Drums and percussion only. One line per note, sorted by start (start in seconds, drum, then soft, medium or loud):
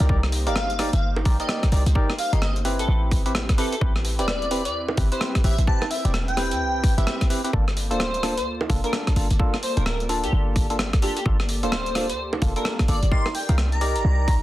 0.00 closed hi-hat medium
0.09 kick loud
0.23 cross-stick medium
0.32 open hi-hat loud
0.47 closed hi-hat medium
0.56 cross-stick loud
0.70 closed hi-hat soft
0.79 cross-stick medium
0.79 open hi-hat loud
0.93 closed hi-hat medium
1.16 high bongo medium
1.25 kick loud
1.25 open hi-hat loud
1.40 closed hi-hat medium
1.49 cross-stick loud
1.63 kick loud
1.63 cross-stick medium
1.63 closed hi-hat medium
1.72 open hi-hat loud
1.86 closed hi-hat medium
1.95 kick loud
2.10 cross-stick medium
2.18 open hi-hat loud
2.33 closed hi-hat medium
2.42 cross-stick loud
2.56 closed hi-hat soft
2.65 open hi-hat loud
2.79 closed hi-hat medium
3.11 kick loud
3.11 open hi-hat loud
3.26 closed hi-hat medium
3.35 cross-stick loud
3.49 kick loud
3.49 cross-stick medium
3.49 closed hi-hat medium
3.58 open hi-hat loud
3.72 closed hi-hat medium
3.81 kick loud
3.96 cross-stick medium
4.05 open hi-hat loud
4.19 closed hi-hat medium
4.28 cross-stick loud
4.42 closed hi-hat soft
4.51 open hi-hat loud
4.65 closed hi-hat medium
4.89 high bongo medium
4.97 kick loud
4.97 open hi-hat loud
5.12 closed hi-hat medium
5.21 cross-stick loud
5.35 kick loud
5.35 cross-stick medium
5.35 closed hi-hat medium
5.44 open hi-hat loud
5.58 closed hi-hat medium
5.67 kick loud
5.82 cross-stick medium
5.82 high bongo medium
5.91 open hi-hat loud
6.05 closed hi-hat medium
6.14 cross-stick loud
6.28 closed hi-hat soft
6.37 cross-stick medium
6.37 open hi-hat loud
6.51 closed hi-hat medium
6.84 kick loud
6.84 open hi-hat loud
6.98 closed hi-hat medium
7.07 cross-stick loud
7.21 kick loud
7.21 cross-stick medium
7.21 closed hi-hat medium
7.30 open hi-hat loud
7.45 closed hi-hat medium
7.53 kick loud
7.68 cross-stick medium
7.77 open hi-hat loud
7.91 closed hi-hat medium
8.00 cross-stick loud
8.14 closed hi-hat soft
8.23 cross-stick medium
8.23 open hi-hat loud
8.38 closed hi-hat medium
8.61 high bongo medium
8.70 kick loud
8.70 open hi-hat loud
8.84 closed hi-hat medium
8.93 cross-stick loud
9.07 kick loud
9.07 cross-stick medium
9.07 closed hi-hat medium
9.16 open hi-hat loud
9.30 closed hi-hat medium
9.39 kick loud
9.54 cross-stick medium
9.63 open hi-hat loud
9.77 closed hi-hat medium
9.86 cross-stick loud
10.00 closed hi-hat soft
10.09 open hi-hat loud
10.24 closed hi-hat medium
10.56 kick loud
10.56 open hi-hat loud
10.70 closed hi-hat medium
10.79 cross-stick loud
10.93 kick loud
10.93 cross-stick medium
10.93 closed hi-hat soft
11.02 open hi-hat loud
11.17 closed hi-hat medium
11.26 kick loud
11.40 cross-stick medium
11.49 open hi-hat loud
11.63 closed hi-hat medium
11.72 cross-stick loud
11.86 closed hi-hat soft
11.95 cross-stick medium
11.95 open hi-hat loud
12.10 closed hi-hat medium
12.33 high bongo medium
12.42 kick loud
12.42 open hi-hat loud
12.56 closed hi-hat medium
12.65 cross-stick loud
12.79 kick loud
12.79 cross-stick medium
12.79 closed hi-hat soft
12.88 open hi-hat loud
13.03 closed hi-hat medium
13.12 kick loud
13.26 cross-stick medium
13.26 high bongo medium
13.35 open hi-hat loud
13.49 closed hi-hat medium
13.58 cross-stick loud
13.72 closed hi-hat soft
13.81 open hi-hat loud
13.96 closed hi-hat medium
14.28 kick loud
14.28 open hi-hat loud